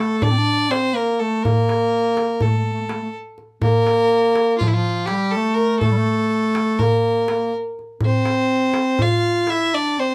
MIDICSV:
0, 0, Header, 1, 4, 480
1, 0, Start_track
1, 0, Tempo, 487805
1, 1420, Time_signature, 9, 3, 24, 8
1, 9985, End_track
2, 0, Start_track
2, 0, Title_t, "Violin"
2, 0, Program_c, 0, 40
2, 0, Note_on_c, 0, 69, 82
2, 226, Note_on_c, 0, 74, 93
2, 241, Note_off_c, 0, 69, 0
2, 698, Note_on_c, 0, 72, 93
2, 713, Note_off_c, 0, 74, 0
2, 945, Note_on_c, 0, 70, 83
2, 960, Note_off_c, 0, 72, 0
2, 1173, Note_on_c, 0, 69, 74
2, 1187, Note_off_c, 0, 70, 0
2, 1405, Note_on_c, 0, 70, 84
2, 1420, Note_off_c, 0, 69, 0
2, 2389, Note_on_c, 0, 69, 68
2, 2403, Note_off_c, 0, 70, 0
2, 3105, Note_off_c, 0, 69, 0
2, 3568, Note_on_c, 0, 70, 97
2, 4495, Note_off_c, 0, 70, 0
2, 4509, Note_on_c, 0, 65, 78
2, 4602, Note_on_c, 0, 64, 67
2, 4617, Note_off_c, 0, 65, 0
2, 4657, Note_on_c, 0, 65, 85
2, 4672, Note_off_c, 0, 64, 0
2, 4981, Note_on_c, 0, 67, 86
2, 4996, Note_off_c, 0, 65, 0
2, 5226, Note_on_c, 0, 69, 85
2, 5241, Note_off_c, 0, 67, 0
2, 5458, Note_on_c, 0, 70, 85
2, 5473, Note_off_c, 0, 69, 0
2, 5700, Note_off_c, 0, 70, 0
2, 5706, Note_on_c, 0, 69, 88
2, 6678, Note_on_c, 0, 70, 76
2, 6693, Note_off_c, 0, 69, 0
2, 7408, Note_off_c, 0, 70, 0
2, 7922, Note_on_c, 0, 72, 96
2, 8876, Note_on_c, 0, 77, 86
2, 8891, Note_off_c, 0, 72, 0
2, 9350, Note_on_c, 0, 76, 92
2, 9365, Note_off_c, 0, 77, 0
2, 9588, Note_on_c, 0, 74, 86
2, 9603, Note_off_c, 0, 76, 0
2, 9837, Note_on_c, 0, 72, 80
2, 9852, Note_off_c, 0, 74, 0
2, 9985, Note_off_c, 0, 72, 0
2, 9985, End_track
3, 0, Start_track
3, 0, Title_t, "Clarinet"
3, 0, Program_c, 1, 71
3, 0, Note_on_c, 1, 57, 80
3, 220, Note_on_c, 1, 62, 80
3, 234, Note_off_c, 1, 57, 0
3, 306, Note_on_c, 1, 60, 62
3, 321, Note_off_c, 1, 62, 0
3, 368, Note_on_c, 1, 62, 78
3, 382, Note_off_c, 1, 60, 0
3, 684, Note_on_c, 1, 60, 80
3, 699, Note_off_c, 1, 62, 0
3, 922, Note_on_c, 1, 58, 70
3, 936, Note_off_c, 1, 60, 0
3, 1184, Note_on_c, 1, 57, 67
3, 1199, Note_off_c, 1, 58, 0
3, 1420, Note_on_c, 1, 58, 81
3, 1434, Note_off_c, 1, 57, 0
3, 2380, Note_off_c, 1, 58, 0
3, 2391, Note_on_c, 1, 57, 56
3, 2452, Note_off_c, 1, 57, 0
3, 2458, Note_on_c, 1, 57, 38
3, 2525, Note_off_c, 1, 57, 0
3, 2530, Note_on_c, 1, 57, 39
3, 2598, Note_off_c, 1, 57, 0
3, 2604, Note_on_c, 1, 57, 34
3, 2672, Note_off_c, 1, 57, 0
3, 2684, Note_on_c, 1, 57, 40
3, 2749, Note_off_c, 1, 57, 0
3, 2763, Note_on_c, 1, 57, 33
3, 2808, Note_off_c, 1, 57, 0
3, 2814, Note_on_c, 1, 57, 38
3, 2887, Note_off_c, 1, 57, 0
3, 2895, Note_on_c, 1, 57, 37
3, 2959, Note_off_c, 1, 57, 0
3, 2965, Note_on_c, 1, 57, 46
3, 3036, Note_off_c, 1, 57, 0
3, 3565, Note_on_c, 1, 58, 96
3, 4542, Note_on_c, 1, 53, 75
3, 4557, Note_off_c, 1, 58, 0
3, 4673, Note_off_c, 1, 53, 0
3, 4679, Note_on_c, 1, 53, 67
3, 5018, Note_on_c, 1, 55, 79
3, 5033, Note_off_c, 1, 53, 0
3, 5273, Note_on_c, 1, 57, 82
3, 5288, Note_off_c, 1, 55, 0
3, 5720, Note_off_c, 1, 57, 0
3, 5726, Note_on_c, 1, 57, 77
3, 5819, Note_on_c, 1, 55, 67
3, 5833, Note_off_c, 1, 57, 0
3, 5871, Note_on_c, 1, 57, 88
3, 5886, Note_off_c, 1, 55, 0
3, 6711, Note_on_c, 1, 58, 73
3, 6726, Note_off_c, 1, 57, 0
3, 7175, Note_off_c, 1, 58, 0
3, 7181, Note_on_c, 1, 58, 63
3, 7403, Note_off_c, 1, 58, 0
3, 7882, Note_on_c, 1, 60, 79
3, 8864, Note_on_c, 1, 65, 78
3, 8879, Note_off_c, 1, 60, 0
3, 9336, Note_on_c, 1, 64, 78
3, 9350, Note_off_c, 1, 65, 0
3, 9579, Note_on_c, 1, 62, 73
3, 9594, Note_off_c, 1, 64, 0
3, 9823, Note_on_c, 1, 60, 73
3, 9838, Note_off_c, 1, 62, 0
3, 9985, Note_off_c, 1, 60, 0
3, 9985, End_track
4, 0, Start_track
4, 0, Title_t, "Darbuka"
4, 216, Note_on_c, 9, 64, 98
4, 314, Note_off_c, 9, 64, 0
4, 352, Note_on_c, 9, 62, 26
4, 450, Note_off_c, 9, 62, 0
4, 703, Note_on_c, 9, 63, 60
4, 801, Note_off_c, 9, 63, 0
4, 1186, Note_on_c, 9, 62, 24
4, 1284, Note_off_c, 9, 62, 0
4, 1428, Note_on_c, 9, 64, 86
4, 1526, Note_off_c, 9, 64, 0
4, 1664, Note_on_c, 9, 63, 56
4, 1763, Note_off_c, 9, 63, 0
4, 2136, Note_on_c, 9, 63, 55
4, 2235, Note_off_c, 9, 63, 0
4, 2367, Note_on_c, 9, 64, 83
4, 2465, Note_off_c, 9, 64, 0
4, 2497, Note_on_c, 9, 62, 27
4, 2595, Note_off_c, 9, 62, 0
4, 2847, Note_on_c, 9, 63, 58
4, 2946, Note_off_c, 9, 63, 0
4, 3324, Note_on_c, 9, 62, 25
4, 3422, Note_off_c, 9, 62, 0
4, 3558, Note_on_c, 9, 64, 89
4, 3656, Note_off_c, 9, 64, 0
4, 3804, Note_on_c, 9, 63, 56
4, 3902, Note_off_c, 9, 63, 0
4, 4285, Note_on_c, 9, 63, 60
4, 4384, Note_off_c, 9, 63, 0
4, 4536, Note_on_c, 9, 64, 81
4, 4635, Note_off_c, 9, 64, 0
4, 4647, Note_on_c, 9, 62, 26
4, 4745, Note_off_c, 9, 62, 0
4, 4994, Note_on_c, 9, 63, 59
4, 5093, Note_off_c, 9, 63, 0
4, 5484, Note_on_c, 9, 62, 25
4, 5582, Note_off_c, 9, 62, 0
4, 5720, Note_on_c, 9, 64, 82
4, 5819, Note_off_c, 9, 64, 0
4, 6445, Note_on_c, 9, 63, 65
4, 6543, Note_off_c, 9, 63, 0
4, 6683, Note_on_c, 9, 64, 81
4, 6781, Note_off_c, 9, 64, 0
4, 6797, Note_on_c, 9, 62, 24
4, 6896, Note_off_c, 9, 62, 0
4, 6928, Note_on_c, 9, 62, 22
4, 7026, Note_off_c, 9, 62, 0
4, 7165, Note_on_c, 9, 63, 60
4, 7264, Note_off_c, 9, 63, 0
4, 7414, Note_on_c, 9, 62, 22
4, 7512, Note_off_c, 9, 62, 0
4, 7664, Note_on_c, 9, 62, 20
4, 7763, Note_off_c, 9, 62, 0
4, 7877, Note_on_c, 9, 64, 78
4, 7976, Note_off_c, 9, 64, 0
4, 8122, Note_on_c, 9, 63, 60
4, 8220, Note_off_c, 9, 63, 0
4, 8596, Note_on_c, 9, 63, 62
4, 8695, Note_off_c, 9, 63, 0
4, 8844, Note_on_c, 9, 64, 77
4, 8943, Note_off_c, 9, 64, 0
4, 9319, Note_on_c, 9, 63, 58
4, 9417, Note_off_c, 9, 63, 0
4, 9807, Note_on_c, 9, 62, 26
4, 9906, Note_off_c, 9, 62, 0
4, 9985, End_track
0, 0, End_of_file